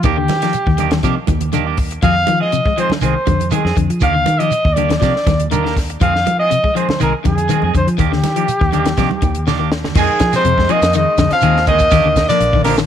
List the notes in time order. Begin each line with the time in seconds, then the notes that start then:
0.03 D#2 D#3 A#3 D4 G4, kick, closed hi-hat, high conga, low conga, shekere
0.17 D3, muted clean electric guitar stroke
0.28 D#3, muted clean electric guitar stroke, snare, closed hi-hat, high conga, shekere
0.42 F3 A#3 D4 G4, snare, closed hi-hat
0.53 muted clean electric guitar stroke, closed hi-hat, high conga, shekere
0.67 D#2 D#3, kick
0.78 D3 D#3 A#3 D4 G4, closed hi-hat, high conga, shekere
0.91 D#3, muted clean electric guitar stroke, snare, closed hi-hat, high conga
1.03 C3 D#3 F3 A#3 D4 G4, kick, closed hi-hat, high conga, shekere
1.16 muted clean electric guitar stroke
1.27 D#2 D#3, muted clean electric guitar stroke, kick, closed hi-hat, high conga, shekere
1.41 closed hi-hat, low conga
1.52 D3 D#3 A#3 D4 G4, closed hi-hat, high conga, shekere
1.67 A#3 D4 G4
1.77 muted clean electric guitar stroke, kick, open hi-hat, shekere
1.91 muted clean electric guitar stroke, closed hi-hat
2.02 F2 F3 G#3 C4 G#4 F5, muted clean electric guitar stroke, kick, closed hi-hat, high conga, low conga, shekere
2.16 muted clean electric guitar stroke
2.27 D#3 F3, muted clean electric guitar stroke, closed hi-hat, high conga, shekere
2.40 G#3 C4 G#4 D#5
2.52 C3, muted clean electric guitar stroke, closed hi-hat, high conga, shekere
2.66 G#3, kick
2.77 D#3 F3 G#3 C4 G#4 C5, closed hi-hat, shekere
2.90 muted clean electric guitar stroke, snare, high conga, low conga
3.01 C2 D#3 G#3 C4 G#4 C5, closed hi-hat, high conga, shekere
3.15 muted clean electric guitar stroke
3.26 F2 D3, muted clean electric guitar stroke, kick, closed hi-hat, high conga, shekere
3.40 closed hi-hat, low conga
3.51 D#3 G#3 C4 G#4, closed hi-hat, high conga, shekere
3.55 G#4
3.65 F2 G#3 C4 G#4, snare
3.75 F2 D3, muted clean electric guitar stroke, kick, closed hi-hat, shekere
3.90 F3, muted clean electric guitar stroke, closed hi-hat
4.00 D#2 D#3 A#3 D4 G4 F5, kick, closed hi-hat, high conga, low conga, shekere
4.14 D3, muted clean electric guitar stroke
4.26 D#3, muted clean electric guitar stroke, closed hi-hat, high conga, shekere
4.39 F3 A#3 D4 G4 D#5, closed hi-hat
4.51 muted clean electric guitar stroke, closed hi-hat, high conga, shekere
4.65 D#2, kick
4.73 D#3 D5, closed hi-hat, high conga
4.77 D3 A#3 D4 G4, shekere
4.89 D#3, muted clean electric guitar stroke, snare, closed hi-hat, high conga
4.98 C3 D#3 F3 A#3 D5, kick, shekere
5.02 D4 G4, snare, closed hi-hat, high conga
5.15 muted clean electric guitar stroke, snare
5.26 D#2 D#3, muted clean electric guitar stroke, kick, snare, closed hi-hat, high conga, shekere
5.40 closed hi-hat, low conga
5.51 D3 D#3 A#3 D4 G4 A#4, closed hi-hat, high conga, shekere
5.64 D#3 A#3 D4 G4, snare
5.76 muted clean electric guitar stroke, kick, snare, open hi-hat, shekere
5.90 muted clean electric guitar stroke, closed hi-hat
6.00 F2 D#3 F3 G#3 C4 G#4 F5, kick, closed hi-hat, high conga, low conga, shekere
6.15 muted clean electric guitar stroke, snare
6.26 F3, muted clean electric guitar stroke, closed hi-hat, high conga, shekere
6.40 G#3 C4 G#4 D#5
6.50 C3, muted clean electric guitar stroke, closed hi-hat, high conga, shekere
6.64 G#3, kick
6.75 D#3 F3 G#3 C4 G#4 C5, closed hi-hat, shekere
6.89 muted clean electric guitar stroke, snare, high conga, low conga
7.00 C2 D#3 G#3 C4 G#4 A#4, closed hi-hat, high conga, shekere
7.14 muted clean electric guitar stroke
7.24 F2 D3 G#4, muted clean electric guitar stroke, kick, closed hi-hat, high conga, shekere
7.38 closed hi-hat, low conga
7.49 D#3 G#3 C4 G#4, closed hi-hat, high conga, shekere
7.62 F2 G#3 C4 G#4, high conga
7.74 F2 D3 C5, muted clean electric guitar stroke, kick, closed hi-hat, shekere
7.87 F3, muted clean electric guitar stroke, closed hi-hat
7.98 D#2 D#3 A#3 D4 G4, kick, closed hi-hat, high conga, low conga, shekere
8.12 D3, muted clean electric guitar stroke, snare
8.23 D#3, muted clean electric guitar stroke, snare, closed hi-hat, high conga, shekere
8.36 F3 A#3 D4 G4, closed hi-hat
8.48 muted clean electric guitar stroke, closed hi-hat, high conga, shekere
8.61 D#2 D#3, kick
8.72 D3 D#3 A#3 D4 G4, closed hi-hat, high conga, shekere
8.85 D#3, muted clean electric guitar stroke, snare, closed hi-hat, high conga
8.97 C3 D#3 F3 A#3 D4 G4, kick, snare, closed hi-hat, high conga, shekere
9.10 muted clean electric guitar stroke, high conga
9.22 D#2 D#3, muted clean electric guitar stroke, kick, closed hi-hat, low conga, shekere
9.35 closed hi-hat
9.47 D3 D#3 A#3 D4 G4, snare, shekere
9.59 D#3 A#3 D4 G4
9.72 snare, shekere
9.84 muted clean electric guitar stroke, snare, low conga
9.95 F2 G#2 D#3 F3 G#3 C4 G#4, kick, snare, crash, shekere
10.19 F3, muted clean electric guitar stroke, kick, snare, closed hi-hat, shekere
10.32 C3 C4 G#4 C5, snare, closed hi-hat, shekere
10.37 G#3
10.44 F2 C3, muted clean electric guitar stroke, closed hi-hat, shekere
10.57 G#3, muted clean electric guitar stroke, kick, snare
10.69 D#3 F3 G#3 A#3 C4 G#4 D#5, closed hi-hat, shekere
10.82 F2, muted clean electric guitar stroke, snare, closed hi-hat, shekere
10.93 D#3 D#5, closed hi-hat, shekere
10.98 G#3
11.06 muted clean electric guitar stroke
11.17 F2 D3, muted clean electric guitar stroke, kick, snare, closed hi-hat, shekere
11.31 F3 C4 F5, muted clean electric guitar stroke, muted fingered electric bass stroke, snare, closed hi-hat, shekere
11.41 D#2 D#3 G#3 C4 G#4, closed hi-hat, shekere
11.57 snare
11.67 D3 D#3 G#3 A#3 C4 G#4 D#5, kick, closed hi-hat, shekere
11.79 muted clean electric guitar stroke, kick, closed hi-hat, shekere
11.91 D#2 D#3 A#3 D4 G4, kick, snare, closed hi-hat, shekere
12.04 D#2 D3
12.16 muted clean electric guitar stroke, kick, snare, closed hi-hat, shekere
12.29 D3 F3 A#3 D4 D5, closed hi-hat, shekere
12.40 A#1, muted clean electric guitar stroke, closed hi-hat, shekere
12.53 D#3, muted clean electric guitar stroke, kick
12.64 A#2 D3 D#3 A#3 D4 G4 A#4, snare, open hi-hat, shekere
12.69 F3
12.78 D#3, muted clean electric guitar stroke, snare, shekere